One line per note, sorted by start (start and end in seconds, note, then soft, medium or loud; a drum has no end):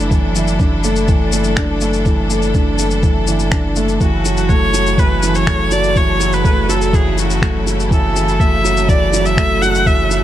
0.00 3.99 F#1 medium
0.00 0.11 E3 medium
0.00 3.97 F#3 medium
0.00 0.84 A3 loud
0.00 0.60 D4 loud
0.00 3.97 D4 medium
0.00 3.97 E4 medium
0.00 10.24 A4 medium
0.11 0.34 E3 medium
0.11 kick loud
0.11 shaker soft
0.35 0.49 E3 medium
0.35 shaker medium
0.48 shaker soft
0.60 0.83 D4 medium
0.60 kick medium
0.60 shaker soft
0.84 1.07 A3 loud
0.84 shaker medium
0.96 shaker soft
1.08 1.32 E3 medium
1.08 kick loud
1.08 shaker soft
1.32 1.56 A3 loud
1.32 shaker medium
1.44 shaker soft
1.57 1.71 D4 loud
1.57 finger snap medium
1.57 kick loud
1.57 shaker soft
1.81 2.05 A3 loud
1.81 shaker medium
1.93 shaker soft
2.06 2.29 E3 medium
2.06 kick loud
2.06 shaker soft
2.30 2.44 A3 medium
2.30 shaker medium
2.42 shaker soft
2.54 2.78 D4 medium
2.54 kick medium
2.54 shaker soft
2.79 3.02 A3 medium
2.79 shaker medium
2.91 shaker soft
3.03 3.27 E3 medium
3.03 kick loud
3.03 shaker soft
3.27 3.42 E3 medium
3.27 shaker medium
3.40 shaker soft
3.52 3.76 D4 medium
3.52 finger snap medium
3.52 kick loud
3.52 shaker soft
3.76 4.00 A3 loud
3.76 shaker medium
3.89 shaker soft
4.01 10.24 F#1 medium
4.01 10.24 C#3 medium
4.01 4.24 E3 medium
4.01 10.24 F#3 medium
4.01 10.24 E4 medium
4.01 4.50 F#4 medium
4.01 kick loud
4.01 shaker soft
4.25 4.39 F#3 medium
4.25 shaker medium
4.37 shaker soft
4.49 4.73 A3 medium
4.49 5.01 C#5 loud
4.49 kick loud
4.49 shaker soft
4.74 4.97 F#3 medium
4.74 shaker medium
4.87 shaker soft
4.98 5.22 E3 medium
4.98 5.37 B4 medium
4.98 kick loud
4.98 shaker soft
5.23 5.37 E3 medium
5.23 shaker medium
5.35 5.74 C#5 loud
5.35 shaker soft
5.47 5.71 A3 medium
5.47 finger snap medium
5.47 kick loud
5.47 shaker soft
5.71 5.95 F#3 loud
5.71 5.98 D5 loud
5.71 shaker medium
5.84 shaker soft
5.96 6.19 E3 medium
5.96 6.35 C#5 loud
5.96 kick loud
5.96 shaker soft
6.20 6.43 F#3 loud
6.20 shaker medium
6.33 6.71 B4 loud
6.33 shaker soft
6.44 6.59 A3 loud
6.44 kick loud
6.44 shaker soft
6.69 6.92 F#3 loud
6.69 6.96 A4 medium
6.69 shaker medium
6.82 shaker soft
6.93 7.17 E3 medium
6.93 7.11 G#4 medium
6.93 kick loud
6.93 shaker soft
7.11 7.21 G#4 medium
7.18 7.32 F#3 medium
7.18 7.68 F#4 medium
7.18 shaker medium
7.30 shaker soft
7.42 7.65 A3 medium
7.42 finger snap medium
7.42 kick loud
7.42 shaker soft
7.67 7.90 F#3 medium
7.67 shaker medium
7.80 shaker soft
7.91 8.14 E3 medium
7.91 8.42 A4 medium
7.91 kick loud
7.91 shaker soft
8.16 8.30 E3 medium
8.16 shaker medium
8.28 shaker soft
8.40 8.63 A3 medium
8.40 8.90 E5 loud
8.40 kick loud
8.40 shaker soft
8.64 8.88 F#3 loud
8.64 shaker medium
8.77 shaker soft
8.89 9.12 E3 medium
8.89 9.27 D5 loud
8.89 kick loud
8.89 shaker soft
9.13 9.37 F#3 loud
9.13 shaker medium
9.26 9.64 E5 loud
9.26 shaker soft
9.37 9.52 A3 loud
9.37 finger snap medium
9.37 kick loud
9.37 shaker soft
9.62 9.85 F#3 loud
9.62 9.88 F#5 loud
9.62 shaker medium
9.75 shaker soft
9.86 10.10 E3 medium
9.86 10.16 E5 loud
9.86 kick loud
9.86 shaker soft
10.11 10.24 F#3 medium
10.11 shaker medium
10.16 10.24 E5 medium